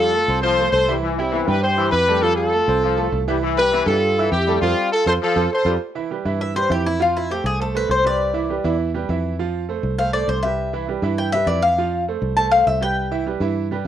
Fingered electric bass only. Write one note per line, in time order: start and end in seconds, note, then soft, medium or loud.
0.00 0.23 F2 medium
0.28 0.70 C2 medium
0.72 1.42 C2 medium
1.48 1.90 G2 medium
1.92 2.62 F2 medium
2.68 3.09 C2 medium
3.12 3.81 C2 loud
3.86 4.28 G2 loud
4.32 4.59 F2 loud
4.62 4.73 F2 loud
5.06 5.17 F2 loud
5.36 5.47 F2 medium
5.65 5.77 F2 loud
6.25 6.67 G2 medium
6.70 7.39 F2 medium
7.44 7.86 C2 medium
7.89 8.59 C2 loud
8.64 9.06 E2 loud
9.09 9.78 F2 loud
9.83 10.25 C2 medium
10.28 10.97 C2 medium
11.02 11.44 G2 medium
11.46 12.16 F2 medium
12.22 12.63 C2 medium
12.67 13.35 C2 medium
13.40 13.82 G2 medium